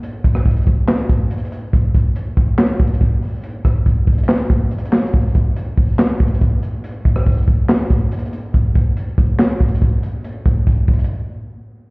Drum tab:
HH |x-----------x-----------x--x--x--x--x-----------------------x-----------x---x---x---x-----------|x-----------x-----------x-----------x-----------------------x---x---x---x-----------o-----------|x-----------x-----------x-----------x--x--x--x--------x-----x-----------x---x---x-------x---x---|x---x---x---x-----------x-----------o-----------p-----------x---x---x---x-----------x-----------|
CP |------------------------------------------------x-----------------------------------------------|------------------------------------------------x-----------------------------------------------|------------------------------------------------x-----------------------------------x-----------|------------------------------------------------x-----------------------------------------------|
SD |------------------r-----------------------------o-----------------------------------------------|------------------------------------------------o-----------------------------------------------|------------r-----------------------------------o-----------------------------------o-----------|------------------------------------------------o-----------------------------------------------|
BD |------------o-----------o-----------o-----------------------o-----------------------------------|o-----------o-----------------------o-----------------------o-----------o-----------------------|------------o-----------o-----------o-----------------------o-----------------------------------|o-----------o-----------------------o-----------------------o-----------o-----------------------|

HH |x-----------x-----------x--x--x--x--x-----------------------x-----------x---x---x---x-----------|x-----------x-----------x-----------x-----------------------x---x---x---x-----------x-----------|x-----------x-----------x-----------x--x--x--x--------------------------------------------------|
CP |------------------------------------------------x-----------------------------------------------|------------------------------------------------x-----------------------------------------------|------------------------------------------------------------------------------------------------|
SD |------------------r-----------------------------o-----------------------------------------------|------------------------------------------------o-----------------------------------------------|------------------------------------------------------------------------------------------------|
BD |------------o-----------o-----------o-----------------------o-----------------------------------|o-----------o-----------------------o-----------------------o-----------o-----------------------|------------o-----------o-----------o-----------------------------------------------------------|